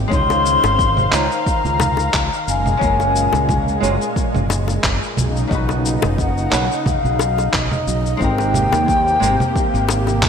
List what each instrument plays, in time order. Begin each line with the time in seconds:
0.08 fretless electric bass C#2, analog synth pad D#3 C5 F5, nylon-string guitar G#3 C#4 D#4, kick, low conga
0.13 nylon-string guitar F4 C5, flute C6, shaker
0.30 high bongo, shaker
0.46 shaker
0.63 fretless electric bass G#1, high bongo, shaker
0.79 kick, shaker
0.97 low conga, shaker
1.10 fretless electric bass C#2, nylon-string guitar G#3 C#4 D#4 F4 C5, flute A#5, clap, shaker
1.32 shaker
1.46 kick, shaker
1.64 fretless electric bass C#2, shaker
1.80 high bongo, low conga, shaker
1.97 high bongo, shaker
2.14 fretless electric bass C#2, kick, clap, shaker
2.33 shaker
2.47 fretless electric bass F#1, analog synth pad A#2 G#3, flute G#5, shaker
2.66 low conga, shaker
2.77 fretless electric bass F#1, nylon-string guitar G#3 C#4 F4
2.81 nylon-string guitar F#4 A#4, kick, shaker
3.00 high bongo, shaker
3.16 shaker
3.33 fretless electric bass C#2, high bongo, shaker
3.49 kick, low conga, shaker
3.68 shaker
3.80 fretless electric bass F#1, nylon-string guitar G#3 C#4 F4 F#4 A#4, shaker
4.02 shaker
4.16 kick, shaker
4.34 fretless electric bass F#1, low conga, shaker
4.50 high bongo, shaker
4.68 high bongo, shaker
4.84 fretless electric bass F#1, kick, clap, shaker
5.03 shaker
5.17 fretless electric bass B1, analog synth pad C#3 D#4, low conga, shaker
5.37 shaker
5.47 fretless electric bass B1, nylon-string guitar A#2 D#4, kick
5.52 nylon-string guitar F#4 B4, shaker
5.69 high bongo, shaker
5.86 shaker
6.02 fretless electric bass F#1, high bongo, low conga, shaker
6.18 flute F#5, kick, shaker
6.38 shaker
6.50 fretless electric bass B1, nylon-string guitar A#3 C#4 D#4 F#4 B4, clap, shaker
6.72 shaker
6.86 flute F5, kick, low conga, shaker
7.04 fretless electric bass B1, shaker
7.19 high bongo, shaker
7.38 high bongo, shaker
7.53 fretless electric bass B1, flute D#5, kick, clap, shaker
7.72 low conga, shaker
7.87 fretless electric bass B1, shaker
8.06 shaker
8.17 fretless electric bass G#1, analog synth pad C3 A#3 G4, nylon-string guitar G#3 C4 D#4, kick
8.22 nylon-string guitar G4 A#4, flute G5, shaker
8.38 high bongo, shaker
8.54 low conga, shaker
8.72 fretless electric bass D#2, high bongo, shaker
8.88 kick, shaker
9.08 shaker
9.20 fretless electric bass G#1, nylon-string guitar G#3 C4 D#4 G4 A#4, shaker
9.40 low conga, shaker
9.56 kick, shaker
9.74 fretless electric bass G#1, shaker
9.89 high bongo, shaker
10.07 high bongo, shaker
10.23 fretless electric bass D#2, kick, clap, low conga, shaker